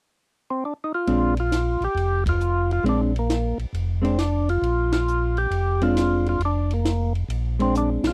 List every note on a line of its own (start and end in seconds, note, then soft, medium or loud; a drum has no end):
0.50 0.64 C4 medium
0.65 0.74 D4 medium
0.84 0.92 D#4 medium
0.94 1.35 F4 medium
1.07 1.77 A#1 medium
1.07 1.34 G#3 medium
1.07 1.34 C4 medium
1.07 1.34 D4 medium
1.07 ride soft
1.37 1.84 F4 medium
1.37 ride soft
1.52 snare medium
1.52 hi-hat pedal medium
1.52 ride medium
1.81 1.88 A#1 soft
1.81 2.24 G4 loud
1.81 ride soft
1.95 2.80 F1 medium
1.95 ride soft
2.26 2.71 F4 loud
2.26 kick medium
2.26 ride medium
2.41 hi-hat pedal medium
2.71 2.85 F4 medium
2.71 ride soft
2.83 3.54 A#1 medium
2.83 3.11 G#3 medium
2.83 3.12 C4 medium
2.83 3.12 D4 medium
2.83 ride medium
2.89 3.01 D4 medium
3.16 3.58 A#3 medium
3.16 ride soft
3.30 snare medium
3.30 hi-hat pedal medium
3.30 ride medium
3.58 3.65 A#1 soft
3.58 ride soft
3.73 4.58 F1 medium
3.73 ride medium
4.02 4.16 G#3 soft
4.02 4.16 C4 medium
4.02 4.19 C4 medium
4.02 4.16 D4 medium
4.02 ride soft
4.18 4.49 D4 medium
4.18 snare medium
4.18 hi-hat pedal medium
4.18 ride medium
4.49 4.92 F4 loud
4.49 ride soft
4.62 5.47 A#1 medium
4.62 ride soft
4.92 5.38 F4 loud
4.92 snare medium
4.92 ride medium
5.08 hi-hat pedal soft
5.37 5.83 G4 medium
5.37 ride soft
5.51 6.36 F1 medium
5.51 ride soft
5.81 6.37 G#3 soft
5.81 6.38 C4 medium
5.81 6.38 D4 medium
5.81 6.28 F4 loud
5.81 ride soft
5.97 snare medium
5.97 hi-hat pedal soft
5.97 ride medium
6.26 6.42 F4 medium
6.26 ride soft
6.39 7.24 F1 medium
6.39 ride soft
6.45 6.73 D4 medium
6.70 7.13 A#3 medium
6.70 ride soft
6.85 snare medium
6.85 hi-hat pedal soft
6.85 ride medium
7.15 ride soft
7.29 7.99 A#1 medium
7.29 ride medium
7.59 8.13 G#3 medium
7.59 8.13 C4 soft
7.59 7.75 C4 medium
7.59 8.13 D4 medium
7.59 ride soft
7.75 7.90 D4 medium
7.75 hi-hat pedal medium
8.03 8.11 A#1 soft
8.03 8.13 F4 medium
8.03 snare medium
8.03 ride medium